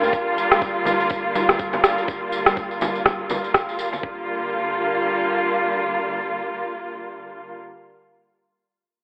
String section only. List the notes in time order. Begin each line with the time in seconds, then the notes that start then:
Already playing: D3 G3 A#3 F4
4.03 D3 G3 A#3 F4